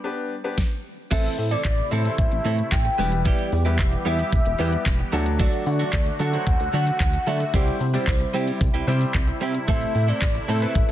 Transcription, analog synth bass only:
1.11 A1
1.38 A2
1.65 A1
1.92 A2
2.18 A1
2.32 A1
2.45 A2
2.72 A1
2.99 E1
3.53 E2
3.79 E1
4.06 E2
4.33 E1
4.46 E1
4.59 E2
4.86 E1
5.13 D2
5.66 D3
5.93 D2
6.20 D3
6.47 D2
6.60 D2
6.74 D3
7.00 D2
7.27 D3
7.54 C2
7.80 C3
8.07 C2
8.34 C3
8.61 C2
8.74 C2
8.87 C3
9.15 C2
9.41 C3
9.68 A1
9.95 A2
10.22 A1
10.49 A2
10.75 A1

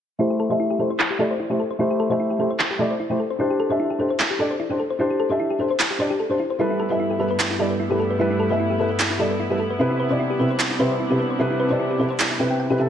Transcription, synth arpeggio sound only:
0.20 E4
0.30 G4
0.40 A4
0.50 C5
0.60 E4
0.70 G4
0.80 A4
0.91 C5
1.00 E4
1.10 G4
1.20 A4
1.31 C5
1.40 E4
1.51 G4
1.60 A4
1.71 C5
1.80 E4
1.91 G4
2.00 A4
2.11 C5
2.20 E4
2.31 G4
2.40 A4
2.51 C5
2.60 E4
2.71 G4
2.80 A4
2.91 C5
3.00 E4
3.11 G4
3.20 A4
3.30 C5
3.40 E4
3.50 G4
3.60 A4
3.70 C5
3.80 E4
3.90 G4
4.00 A4
4.10 C5
4.20 E4
4.31 G4
4.40 A4
4.50 C5
4.60 E4
4.70 G4
4.80 A4
4.90 C5
5.00 E4
5.10 G4
5.20 A4
5.30 C5
5.40 E4
5.50 G4
5.60 A4
5.71 C5
5.80 E4
5.90 G4
6.00 C5
6.10 G4
6.20 A4
6.31 C5
6.40 E4
6.50 C5
6.60 E4
6.70 E4
6.80 A4
6.91 B4
7.00 E4
7.11 G4
7.20 A4
7.31 B4
7.40 E4
7.51 E4
7.60 A4
7.71 B4
7.80 E4
7.91 G4
8.00 A4
8.10 B4
8.20 E4
8.30 E4
8.40 A4
8.50 B4
8.60 E4
8.70 G4
8.80 A4
8.90 B4
9.00 E4
9.10 E4
9.20 A4
9.30 B4
9.40 E4
9.50 G4
9.60 A4
9.70 B4
9.80 E4
9.90 E4
10.00 B4
10.10 C5
10.20 E4
10.30 G4
10.40 B4
10.51 C5
10.60 E4
10.70 E4
10.80 B4
10.90 C5
11.00 E4
11.11 G4
11.20 B4
11.31 C5
11.40 E4
11.51 E4
11.60 B4
11.71 C5
11.80 E4
11.90 G4
12.00 B4
12.11 C5
12.20 E4
12.31 E4
12.40 G4
12.51 G5
12.60 G5
12.70 G4
12.80 G4

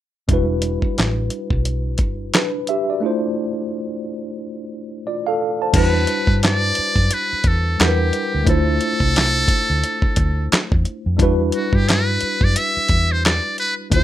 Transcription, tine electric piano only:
0.28 G3 D4 E4
0.32 F#4 B4
2.35 D4 B4
2.69 G4 E5
2.90 F#4 D5
3.00 A3 D4 E4
3.05 F4 C5
5.07 F4 D5
5.27 A4 F5
5.62 C5 A5
5.72 G3 D4 E4
5.77 F#4 B4
7.78 G3 D4 E4 A#4 F#5
7.88 B4
8.44 A3 D4 E4
8.49 F4 C5
11.17 G3 D4 E4
11.22 F#4 B4
13.90 A3 D4 E4
13.95 F4 C5

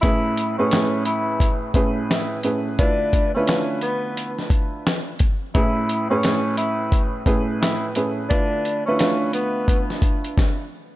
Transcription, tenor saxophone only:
0.02 E4
0.58 C#4
1.06 E4
2.10 E4
2.79 D4
3.34 C#4
3.83 B3
5.55 E4
6.10 C#4
6.58 E4
7.61 E4
8.29 D4
8.86 C#4
9.34 B3

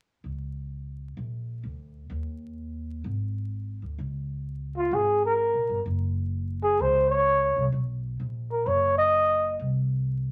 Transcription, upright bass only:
0.24 C#2
1.17 A#1
1.63 D2
2.10 D#2
3.04 G#1
3.82 D2
3.98 C#2
4.91 G#1
5.54 A#1
5.69 G1
5.86 F#1
6.79 C#2
7.56 C2
7.72 B1
8.20 A#1
8.66 F#1
9.59 C2

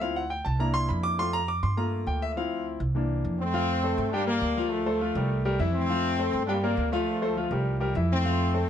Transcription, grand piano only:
0.01 F3 C4 E4 F5
0.16 F#5
0.30 G5
0.45 A5
0.59 A#3 D4 E4 A#5
0.74 C6
0.89 B5
1.03 D6
1.18 A3 C4 F4 C6
1.33 A#5
1.48 D6
1.63 C6
1.77 A3 A#3 F4 A#5
2.07 G5
2.22 E5
2.32 F3 E5
2.37 C4 E4 F5
2.95 E3 A#3 D4
3.54 F3 F4 F5
3.84 A3 A4 C5
4.13 G3 G4 G5
4.27 A#3 A#4 D5
4.57 F3 F4 F5
4.86 A3 A4 C5
5.01 F3 F4 F5
5.16 G3 G4 A#4
5.45 G3 G4 A#4
5.60 E3 E4 E5
5.89 F3 F4 F5
6.19 A3 A4 C5
6.48 G3 G4 G5
6.64 A#3 A#4 D5
6.93 F3 F4 F5
7.22 A3 A4 C5
7.36 F3 F4 F5
7.51 G3 G4 A#4
7.80 G3 G4 A#4
7.96 E3 E4 E5
8.25 F3 F4 F5
8.54 A3 A4 C5

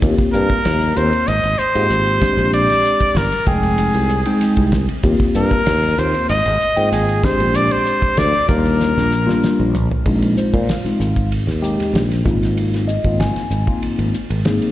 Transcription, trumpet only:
0.33 A#4
0.97 C5
1.28 D#5
1.59 C5
2.54 D5
3.17 A#4
3.48 G#4
5.37 A#4
5.99 C5
6.30 D#5
6.93 G#4
7.25 C5
7.56 D5
7.72 C5
8.18 D5
8.50 A#4

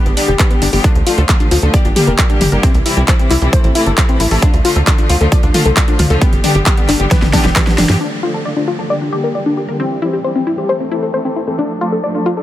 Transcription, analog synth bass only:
0.06 G1
0.28 F1
0.62 G1
0.73 G1
0.95 D2
1.18 D2
1.51 D2
1.63 D2
1.85 G1
2.07 F1
2.41 G1
2.52 G1
2.75 C2
2.97 C2
3.30 C2
3.42 C2
3.64 A1
3.86 G1
4.20 A1
4.31 A1
4.54 D2
4.76 D2
5.10 D2
5.21 D2
5.43 D2
5.66 C2
5.99 D2
6.10 D2
6.33 G1
6.55 G1
6.89 G1
7.00 G1
7.22 G1
7.45 F1
7.78 G1
7.89 G2

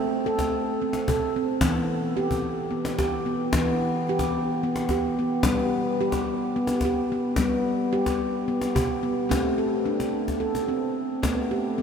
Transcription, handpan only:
Already playing: A3 C4
0.26 A4
0.82 C4
1.09 A4
1.36 C4
1.61 E3 B3
2.17 G4
2.71 B3
2.98 G4
3.26 B3
3.53 E3 B3
4.09 G4
4.63 B3
4.91 G4
5.19 B3
5.45 G3 B3
6.01 G4
6.56 B3
6.85 G4
7.12 B3
7.38 G3 B3
7.93 G4
8.48 B3
8.75 G4
9.03 B3
9.29 A3 C4
9.58 A4
9.86 D4
10.40 A4
10.68 C4
11.23 A3 B3
11.51 G4
11.78 B3

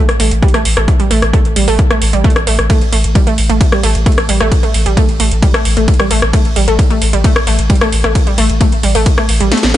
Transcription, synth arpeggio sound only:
0.20 A3
0.43 G3
0.54 A3
0.77 A3
1.00 G3
1.11 A3
1.33 A3
1.56 G3
1.68 A3
1.91 A3
2.13 G3
2.24 A3
2.47 A3
2.70 A3
2.93 A3
3.15 G3
3.27 A3
3.50 A3
3.72 G3
3.83 A3
4.06 A3
4.29 G3
4.40 A3
4.63 A3
4.86 G3
4.97 A3
5.20 A3
5.42 G3
5.54 A3
5.77 A3
6.00 G3
6.11 A3
6.33 A3
6.56 G3
6.68 A3
6.90 A3
7.13 G3
7.24 A3
7.47 A3
7.70 G3
7.81 A3
8.04 A3
8.27 G3
8.38 A3
8.61 A3
8.83 G3
8.95 A3
9.18 A3
9.41 G3
9.52 A3

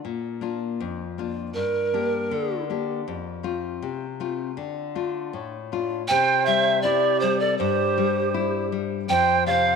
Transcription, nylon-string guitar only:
0.05 A#2
0.41 A#3 D4 F4
0.80 F2
1.18 A#3 D4 F4
1.56 G2
1.94 A#3 D4 G4
2.31 D3
2.70 A#3 D4 G4
3.08 F2
3.43 A3 C4 F4
3.82 C3
4.20 A3 C4 F4
4.57 D3
4.95 A3 D4 F4
5.33 A2
5.72 A3 D4 F4
6.11 C3
6.47 G3
6.85 E4
7.22 G3
7.60 G2
7.98 G3
8.34 E4
8.72 G3
9.09 F2
9.46 C3

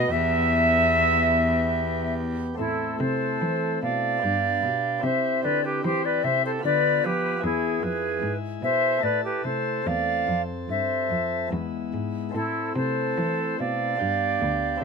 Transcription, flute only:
Already playing: D#5
0.11 E5
2.59 E4
3.00 A4
3.83 D5
5.04 C5
5.45 B4
5.65 G4
5.86 G4
6.05 B4
6.25 C5
6.45 A4
6.66 B4
7.06 G4
7.45 E4
7.83 G#4
8.63 C5
9.04 B4
9.24 G4
9.45 A4
9.88 D5
10.70 C5
12.35 E4
12.76 A4
13.60 D5

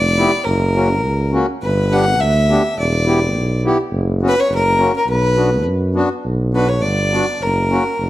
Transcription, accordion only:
0.17 B3 E4 G4
0.75 A#3 C#4 F#4
1.32 A#3 C#4 F#4
1.91 B3 D4 G4
2.49 B3 D4 G4
3.06 B3 E4 G4
3.64 B3 E4 G4
4.21 B3 C#4 F#4
4.77 A#3 C#4 F#4
5.36 B3 D4 F#4
5.94 B3 D4 F#4
6.53 B3 D4 F#4
7.12 B3 D4 F#4
7.69 A#3 C#4 F#4

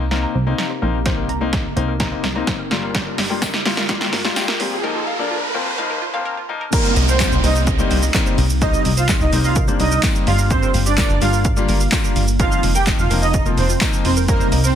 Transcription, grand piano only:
0.11 A#3 C4 D#4
0.46 A#3 C4 D#4
0.82 A#3 C4 D#4
1.05 A#3 C4 D#4
1.41 A#3 C4 D#4
1.76 A#3 C4 D#4
2.00 A#3 C4 D#4
2.35 A#3 C4 D#4
2.71 G3 A#3 F4
3.30 G3 A#3 F4
3.65 G3 A#3 F4
3.89 G3 A#3 F4
4.24 G3 A#3 F4
4.60 G3 A#3 C4
4.83 F3 A#3 D#4
5.19 F3 A#3 D4
5.54 F3 A#3 C4
5.78 F3 A#3 D#4
6.13 F3 A#3 C4
6.49 F3 A#3 D#4
6.72 G3 A#3 C4 D#4
7.20 G3 A#3 C4 D#4
7.43 G3 A#3 C4 D#4
7.79 G3 A#3 C4 D#4
8.14 G3 A#3 C4 D#4
8.61 G3 A#3 C4 D#4
9.09 G3 A#3 C4 D#4
9.32 G3 A#3 C4 D#4
9.68 G3 A#3 C4 D4
10.03 G3 A#3 C4 D#4
10.27 G3 A#3 D4 F4
10.97 G3 A#3 D4 F4
11.21 G3 A#3 D4 F4
11.56 G3 A#3 D4 F4
11.92 G3 A#3 D4 F4
12.39 F3 A#3 C4 D#4
12.86 F3 A#3 C4 D#4
13.10 F3 A#3 C4 D#4
13.46 F3 A#3 C4 F4
13.81 F3 A#3 C4 D#4
14.28 G3 A#3 C4 D#4

